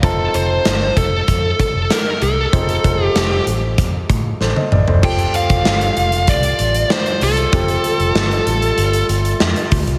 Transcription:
0.02 C4 D#4 F4 A4 A5, kick, closed hi-hat
0.34 F1 C5, closed hi-hat
0.65 G1, snare, closed hi-hat
0.97 F1 A4, kick, closed hi-hat
1.28 F2, kick, closed hi-hat
1.60 A4, kick, closed hi-hat
1.75 F1
1.90 A#4, snare, closed hi-hat
2.22 C2 A4, closed hi-hat
2.52 F1 C4 D#4 F4 G#4, kick, closed hi-hat
2.61 A4
2.69 closed hi-hat
2.84 F1, kick, closed hi-hat
3.05 G4
3.16 F1, snare, closed hi-hat
3.47 A1, closed hi-hat
3.78 F2, kick, closed hi-hat
4.10 A2, kick, closed hi-hat
4.41 A1 A4 C5, snare
4.56 C5 D#5, high tom
4.72 A1 D5, mid tom
4.87 F1 A4 C5, floor tom
5.02 F1 C3 G3 A3 C4 F4 G4 A4 G5, kick, crash
5.19 closed hi-hat
5.34 F5, closed hi-hat
5.50 F1, kick, closed hi-hat
5.65 G1, snare
5.81 closed hi-hat
5.97 F1, closed hi-hat
6.12 closed hi-hat
6.27 C2 D5, kick, closed hi-hat
6.43 closed hi-hat
6.59 A1, closed hi-hat
6.75 closed hi-hat
6.90 C5, snare
7.06 closed hi-hat
7.21 C2 A4, open hi-hat
7.37 closed hi-hat
7.52 F1 C4 F4 G4 A4, kick, closed hi-hat
7.68 closed hi-hat
7.84 closed hi-hat
8.00 F1, closed hi-hat
8.15 G1, snare
8.31 closed hi-hat
8.47 A1, closed hi-hat
8.62 closed hi-hat
8.78 G1, closed hi-hat
8.93 closed hi-hat
9.09 G1, closed hi-hat
9.25 closed hi-hat
9.40 F2, snare
9.56 closed hi-hat
9.71 D2, kick, open hi-hat
9.87 C2, closed hi-hat

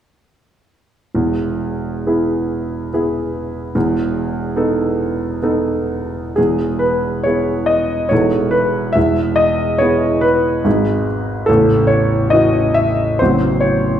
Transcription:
1.15 E1 E2
2.07 B3 E4 G#4
2.93 B3 E4 G#4
3.75 E1 E2
4.56 B3 D#4 A4
5.43 B3 D#4 A4
6.36 E1 E2 G#4
6.79 B4
7.24 B3 E4 G#4 C#5
7.66 D#5
8.09 E1 E2 B3 D#4 A4 C#5
8.51 B4
8.93 E1 E2 E5
9.36 D#5
9.78 B3 E4 G#4 C#5
10.21 B4
10.64 G#1 G#2 G#3 D#4 G#4
11.46 A0 A1 A4
11.87 C#5
12.30 E3 C#4 F#4 D#5
12.74 E5
13.19 A0 A1 F#3 C4 F#4 C5
13.61 C#5

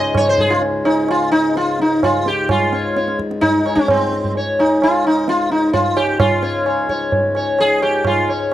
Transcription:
Already playing: C#2 G#2 D#5
0.15 C#5, tabla na, tabla ge
0.29 C5
0.38 G#4, tabla ge
0.50 F4
0.62 tabla tin
0.85 D#4, tabla na
1.09 F4, tabla na
1.32 D#4, tabla na
1.56 F4, tabla te
1.80 D#4, tabla te
2.03 F4, tabla na, tabla ge
2.26 G4, tabla te
2.48 C#2 G#2 F4, tabla na, tabla ge
2.73 C#5, tabla te
2.96 C#5, tabla te
3.08 tabla te
3.19 tabla ke
3.31 tabla te
3.41 D#4, tabla tin, tabla ge
3.66 C#5, tabla na
3.75 C#4, tabla ke
3.88 C4, tabla na, tabla ge
4.13 tabla te
4.24 tabla ge
4.35 C#5, tabla tin
4.59 D#4, tabla na
4.82 F4, tabla na
5.05 D#4, tabla na
5.28 F4, tabla te
5.50 D#4, tabla te
5.73 F4, tabla tin, tabla ge
5.97 G4, tabla na
6.20 F4, tabla na, tabla ge
6.42 C#5, tabla te
6.66 C#5, tabla na
6.89 C#5, tabla ke
7.12 tabla tin, tabla ge
7.35 C#5, tabla na
7.59 G#4, tabla na
7.82 G4, tabla na
8.05 F4, tabla na, tabla ge
8.29 C#5

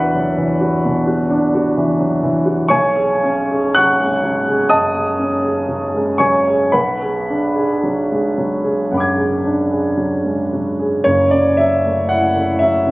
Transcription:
Already playing: E2 E3 D4 F#4 A4 B4 E5 F#5 A5 B5
0.15 F#3
0.37 E3
0.61 F#4
0.85 B2
1.07 F#4
1.30 D4
1.55 F#4
1.77 E3
1.99 F#3
2.23 E3
2.46 F#4
2.69 B1 C#5 G#5 C#6
2.96 G#4
3.23 C#4
3.51 G#4
3.75 F#3 F#5 C#6 F#6
4.01 G#3
4.24 F#3
4.48 G#4
4.69 F#2 D#5 A5 D#6
4.95 G#4
5.19 C#4
5.44 G#4
5.69 F#3
5.94 G#3
6.18 F#3 C#5 G#5 C#6
6.47 G#4
6.72 B1 B4 F#5 B5
7.02 G#4
7.30 D4
7.56 G#4
7.83 F#3
8.12 G#3
8.38 F#3
8.64 G#4
8.91 F#2 F#5 B5
8.97 D6 G#6
9.18 G#4
9.45 D4
9.70 G#4
9.97 F#3
10.24 G#3
10.53 F#3
10.79 G#4
11.04 F#1 F#2 C#5
11.31 C#3 D5
11.57 F#3 E5
11.85 A3
12.09 E4 F#5
12.36 A3
12.59 F#3 E5
12.86 C#3

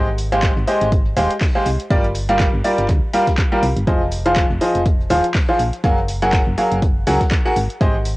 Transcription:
Already playing: G#1
0.18 closed hi-hat, open hi-hat
0.32 G#3 G4 G#4 C5 F5, closed hi-hat
0.43 kick, snare, clap, closed hi-hat
0.57 G#1, closed hi-hat
0.68 G#3 G4 G#4 C5 D#5, closed hi-hat, open hi-hat
0.81 G#1, closed hi-hat
0.92 kick, closed hi-hat
1.05 closed hi-hat
1.17 D#1 G#3 G4 G#4 C5 F5, closed hi-hat, open hi-hat
1.31 closed hi-hat
1.41 kick, snare, clap, closed hi-hat, open hi-hat
1.55 G#3 G4 G#4 C5 F5
1.66 C2, closed hi-hat, open hi-hat
1.79 closed hi-hat
1.90 G1 G3 F4 G4 A#4 D5, kick, closed hi-hat
2.04 closed hi-hat
2.14 closed hi-hat, open hi-hat
2.29 G3 F4 G4 A#4 F5, closed hi-hat
2.39 kick, snare, clap, closed hi-hat
2.54 G1
2.64 G3 F4 G4 A#4 D5, closed hi-hat, open hi-hat
2.78 G1, closed hi-hat
2.88 D2, kick, clap, closed hi-hat
3.13 G3 F4 G4 A#4 F5, closed hi-hat, open hi-hat
3.27 kick, snare, closed hi-hat
3.38 kick, clap, closed hi-hat
3.52 G3 F4 G4 A#4 F5
3.62 C2, closed hi-hat, open hi-hat
3.76 G1, closed hi-hat
3.87 F1 F3 F4 G#4 C5 D#5, kick, closed hi-hat
4.11 closed hi-hat, open hi-hat
4.26 F3 F4 G#4 C5 F5, closed hi-hat
4.36 kick, snare, clap, closed hi-hat
4.50 F1, closed hi-hat
4.61 F3 F4 G#4 C5 D#5, closed hi-hat, open hi-hat
4.75 F1, closed hi-hat
4.86 kick, closed hi-hat
5.00 closed hi-hat
5.09 D#1 F3 F4 G#4 C5 F5, closed hi-hat, open hi-hat
5.24 closed hi-hat
5.34 kick, snare, clap, closed hi-hat, open hi-hat
5.49 F3 F4 G#4 C5 F5
5.59 A#1, closed hi-hat, open hi-hat
5.73 closed hi-hat
5.84 F#1 F#3 F#4 G#4 A#4 F5, kick, closed hi-hat
5.98 closed hi-hat
6.09 closed hi-hat, open hi-hat
6.22 F#3 F#4 G#4 A#4 F#5, closed hi-hat
6.33 kick, snare, clap, closed hi-hat
6.47 F#1
6.57 F#3 F#4 G#4 A#4 F5, closed hi-hat, open hi-hat
6.72 F#1, closed hi-hat
6.82 kick, closed hi-hat
7.07 C#2 F#3 F#4 G#4 A#4 F#5, closed hi-hat, open hi-hat
7.21 kick, snare, closed hi-hat
7.31 kick, snare, clap, closed hi-hat
7.45 F#4 G#4 A#4 F#5, snare
7.56 G#1, closed hi-hat, open hi-hat
7.70 closed hi-hat
7.81 G#1 G#3 G4 G#4 C5 D#5, kick, closed hi-hat
8.05 closed hi-hat, open hi-hat

